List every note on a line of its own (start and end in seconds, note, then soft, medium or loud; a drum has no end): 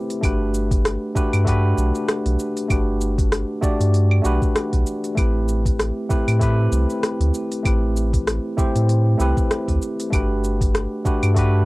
0.00 0.21 A3 loud
0.00 0.24 C4 medium
0.00 0.25 E4 medium
0.00 0.24 G4 medium
0.00 0.21 B4 loud
0.00 0.24 C5 loud
0.10 open hi-hat soft
0.10 shaker soft
0.21 0.97 G1 medium
0.21 1.11 A3 medium
0.21 1.12 D4 medium
0.21 1.12 F#4 medium
0.21 1.13 G4 medium
0.21 kick loud
0.21 open hi-hat medium
0.21 claves medium
0.21 shaker soft
0.25 1.13 B4 medium
0.54 shaker medium
0.71 kick loud
0.71 open hi-hat soft
0.71 shaker soft
0.85 cross-stick loud
0.85 open hi-hat medium
0.85 shaker soft
1.15 1.43 A3 medium
1.15 1.43 D4 medium
1.15 1.43 F#4 medium
1.15 1.44 G4 medium
1.15 1.44 B4 loud
1.15 kick loud
1.15 shaker medium
1.33 1.73 G2 medium
1.33 open hi-hat soft
1.33 claves medium
1.33 shaker soft
1.45 2.66 A3 medium
1.45 2.67 D4 medium
1.45 2.67 F#4 medium
1.45 2.68 G4 medium
1.45 kick medium
1.45 open hi-hat medium
1.45 shaker soft
1.49 2.68 B4 loud
1.77 1.92 B1 loud
1.77 shaker medium
1.95 shaker soft
2.08 cross-stick loud
2.08 open hi-hat soft
2.08 shaker soft
2.26 2.37 B1 loud
2.26 open hi-hat soft
2.39 shaker medium
2.57 open hi-hat soft
2.57 shaker soft
2.68 3.44 G1 medium
2.68 3.59 A3 medium
2.68 3.59 D4 medium
2.68 3.60 F#4 medium
2.68 3.60 G4 medium
2.68 kick loud
2.68 open hi-hat medium
2.68 claves medium
2.68 shaker soft
2.72 3.61 B4 medium
3.01 shaker medium
3.18 kick loud
3.18 open hi-hat soft
3.18 shaker soft
3.32 cross-stick medium
3.32 open hi-hat medium
3.32 shaker soft
3.61 4.21 A3 medium
3.61 4.21 D4 medium
3.61 4.21 F#4 medium
3.61 4.22 G4 medium
3.61 4.22 D5 loud
3.61 kick loud
3.61 shaker medium
3.80 4.21 G2 medium
3.80 open hi-hat soft
3.80 shaker soft
3.94 open hi-hat soft
3.94 shaker soft
4.11 claves medium
4.22 4.39 B1 loud
4.22 5.13 A3 medium
4.22 5.13 D4 medium
4.22 5.14 F#4 medium
4.22 5.14 G4 medium
4.22 shaker medium
4.26 5.15 B4 medium
4.42 kick loud
4.42 shaker soft
4.56 cross-stick loud
4.56 open hi-hat medium
4.56 shaker soft
4.73 4.84 B1 loud
4.73 kick medium
4.73 open hi-hat soft
4.87 shaker medium
5.04 open hi-hat soft
5.04 shaker soft
5.15 5.91 A1 medium
5.15 6.06 A3 medium
5.15 6.06 C4 medium
5.15 6.07 E4 medium
5.15 6.07 G4 medium
5.15 kick loud
5.15 open hi-hat medium
5.15 claves medium
5.15 shaker soft
5.19 6.08 B4 medium
5.49 shaker medium
5.66 kick loud
5.66 open hi-hat soft
5.66 shaker soft
5.80 cross-stick medium
5.80 open hi-hat soft
5.80 shaker soft
6.09 6.37 A3 medium
6.09 6.38 C4 medium
6.09 6.38 E4 medium
6.09 6.38 G4 medium
6.09 6.38 B4 medium
6.09 kick loud
6.09 shaker medium
6.28 6.68 A2 medium
6.28 open hi-hat soft
6.28 claves medium
6.28 shaker soft
6.39 7.61 A3 medium
6.39 7.61 C4 medium
6.39 7.62 E4 medium
6.39 7.62 G4 medium
6.39 7.63 B4 loud
6.39 kick medium
6.39 open hi-hat soft
6.39 shaker soft
6.72 6.86 C2 loud
6.72 shaker medium
6.90 shaker soft
7.03 cross-stick medium
7.03 open hi-hat soft
7.03 shaker soft
7.20 7.31 D2 loud
7.20 open hi-hat soft
7.34 shaker medium
7.52 open hi-hat soft
7.52 shaker soft
7.63 8.39 A1 medium
7.63 8.54 A3 medium
7.63 8.54 C4 medium
7.63 8.55 E4 medium
7.63 8.55 G4 medium
7.63 kick loud
7.63 open hi-hat medium
7.63 claves medium
7.63 shaker soft
7.67 8.56 B4 medium
7.96 shaker medium
8.13 kick medium
8.13 open hi-hat soft
8.13 shaker soft
8.27 cross-stick medium
8.27 open hi-hat medium
8.27 shaker soft
8.57 9.16 A3 medium
8.57 9.16 C4 medium
8.57 9.16 E4 medium
8.57 9.17 G4 medium
8.57 9.17 C5 loud
8.57 kick loud
8.57 shaker medium
8.75 9.16 A2 medium
8.75 open hi-hat soft
8.75 shaker soft
8.89 open hi-hat medium
8.89 shaker soft
9.17 9.34 C2 loud
9.17 10.08 A3 medium
9.17 10.09 C4 medium
9.17 10.09 E4 medium
9.17 10.10 G4 medium
9.17 shaker medium
9.21 10.10 B4 medium
9.37 kick loud
9.37 shaker soft
9.51 cross-stick medium
9.51 open hi-hat soft
9.51 shaker soft
9.68 9.79 D2 loud
9.68 kick medium
9.68 open hi-hat soft
9.82 shaker medium
10.00 open hi-hat soft
10.00 shaker soft
10.10 10.86 G1 loud
10.10 11.01 A3 medium
10.10 11.02 D4 medium
10.10 11.02 F#4 medium
10.10 11.03 G4 medium
10.10 kick loud
10.10 open hi-hat medium
10.10 claves medium
10.10 shaker soft
10.15 11.03 B4 medium
10.44 shaker medium
10.61 kick loud
10.61 open hi-hat soft
10.61 shaker soft
10.75 cross-stick medium
10.75 open hi-hat medium
10.75 shaker soft
11.05 11.33 A3 medium
11.05 11.33 D4 medium
11.05 11.33 F#4 medium
11.05 11.33 G4 medium
11.05 11.34 B4 medium
11.05 kick loud
11.05 shaker medium
11.23 11.63 G2 medium
11.23 open hi-hat soft
11.23 claves medium
11.23 shaker soft
11.34 11.65 A3 loud
11.34 11.65 D4 medium
11.34 11.65 F#4 medium
11.34 11.65 G4 medium
11.34 kick medium
11.34 open hi-hat medium
11.34 shaker soft
11.39 11.65 B4 loud